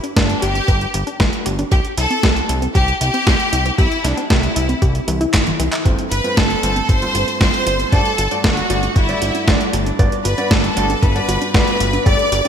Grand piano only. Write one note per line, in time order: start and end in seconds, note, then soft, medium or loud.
5.85 6.00 G2 medium
5.85 6.00 A3 medium
5.85 6.00 C4 medium
5.85 6.00 F4 medium
5.85 6.00 C5 loud
6.24 6.48 G2 medium
6.24 6.48 A3 medium
6.24 6.48 C4 medium
6.24 6.48 F4 medium
6.24 6.48 C5 medium
6.63 6.78 G2 medium
6.63 6.78 A3 medium
6.63 6.78 C4 medium
6.63 6.78 F4 medium
6.63 6.78 C5 loud
7.02 7.38 G2 medium
7.02 7.38 A3 medium
7.02 7.38 C4 medium
7.02 7.38 F4 medium
7.02 7.38 C5 medium
7.41 7.89 G2 medium
7.41 7.89 A3 medium
7.41 7.89 C4 medium
7.41 7.89 F4 medium
7.41 7.89 C5 medium
7.92 8.07 G2 medium
7.92 8.07 A3 medium
7.92 8.07 D4 medium
7.92 8.07 F#4 medium
7.92 8.07 D5 loud
8.31 8.55 G2 medium
8.31 8.55 A3 medium
8.31 8.55 D4 medium
8.31 8.55 F#4 medium
8.31 8.55 D5 medium
8.70 8.85 G2 medium
8.70 8.85 A3 medium
8.70 8.85 D4 medium
8.70 8.85 F#4 medium
8.70 8.85 D5 loud
9.09 9.45 G2 medium
9.09 9.45 A3 medium
9.09 9.44 D4 medium
9.09 9.45 F#4 medium
9.09 9.45 D5 medium
9.47 9.96 G2 medium
9.47 9.96 A3 medium
9.47 9.96 D4 medium
9.47 9.96 F#4 medium
9.47 9.96 D5 medium
9.99 10.14 G2 medium
9.99 10.14 B3 medium
9.99 10.14 D4 medium
9.99 10.14 F#4 medium
9.99 10.14 D5 loud
10.38 10.62 G2 medium
10.38 10.62 B3 medium
10.38 10.62 D4 medium
10.38 10.62 F#4 medium
10.38 10.62 D5 medium
10.77 10.92 G2 medium
10.77 10.92 B3 medium
10.77 10.92 D4 medium
10.77 10.92 F#4 medium
10.77 10.92 D5 loud
11.15 11.51 G2 medium
11.15 11.51 B3 medium
11.15 11.51 D4 medium
11.15 11.51 F#4 medium
11.15 11.51 D5 medium
11.54 12.03 G2 medium
11.54 12.03 B3 medium
11.54 12.03 D4 medium
11.54 12.03 F#4 medium
11.54 12.03 D5 medium
12.06 12.21 G2 medium
12.06 12.21 A3 medium
12.06 12.21 D4 medium
12.06 12.21 G4 medium
12.06 12.21 D5 loud
12.45 12.48 G2 medium
12.45 12.48 A3 medium
12.45 12.48 D4 medium
12.45 12.48 G4 medium
12.45 12.48 D5 medium